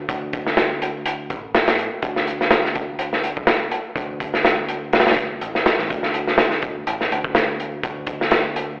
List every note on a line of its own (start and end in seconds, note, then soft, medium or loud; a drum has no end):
0.09 1.32 D2 loud
0.09 kick loud
0.09 closed hi-hat medium
0.33 kick loud
0.33 closed hi-hat medium
0.47 snare soft
0.57 snare loud
0.57 closed hi-hat medium
0.82 closed hi-hat medium
1.06 closed hi-hat medium
1.30 1.87 A1 medium
1.30 kick medium
1.30 closed hi-hat medium
1.54 snare loud
1.54 closed hi-hat medium
1.68 snare loud
1.68 closed hi-hat medium
1.79 closed hi-hat medium
2.02 3.68 D2 medium
2.02 kick loud
2.02 closed hi-hat medium
2.16 snare soft
2.27 closed hi-hat medium
2.41 snare soft
2.51 snare loud
2.51 closed hi-hat medium
2.65 snare soft
2.75 kick medium
2.75 closed hi-hat medium
2.99 closed hi-hat medium
3.13 snare soft
3.24 closed hi-hat medium
3.37 kick loud
3.47 snare loud
3.47 closed hi-hat medium
3.71 closed hi-hat medium
3.96 5.37 D2 loud
3.96 kick loud
3.96 closed hi-hat medium
4.20 kick medium
4.20 closed hi-hat medium
4.34 snare soft
4.45 snare loud
4.45 closed hi-hat medium
4.69 closed hi-hat medium
4.93 snare medium
4.93 closed hi-hat medium
5.00 snare medium
5.00 closed hi-hat medium
5.07 snare medium
5.07 closed hi-hat medium
5.11 snare medium
5.11 closed hi-hat medium
5.17 kick medium
5.17 closed hi-hat medium
5.41 5.74 A1 medium
5.41 closed hi-hat medium
5.55 snare soft
5.66 snare loud
5.66 closed hi-hat medium
5.79 5.88 A1 medium
5.79 snare soft
5.90 6.83 D2 loud
5.90 kick loud
5.90 closed hi-hat medium
6.03 snare soft
6.14 closed hi-hat medium
6.27 snare soft
6.38 snare loud
6.38 closed hi-hat medium
6.51 snare soft
6.62 kick loud
6.62 closed hi-hat medium
6.87 7.06 A1 loud
6.87 closed hi-hat medium
7.01 snare soft
7.11 7.80 D2 loud
7.11 closed hi-hat medium
7.24 kick loud
7.35 snare loud
7.35 closed hi-hat medium
7.60 closed hi-hat medium
7.83 8.80 D2 loud
7.83 kick loud
7.83 closed hi-hat medium
8.06 kick loud
8.06 closed hi-hat medium
8.21 snare medium
8.31 snare loud
8.31 closed hi-hat medium
8.56 closed hi-hat medium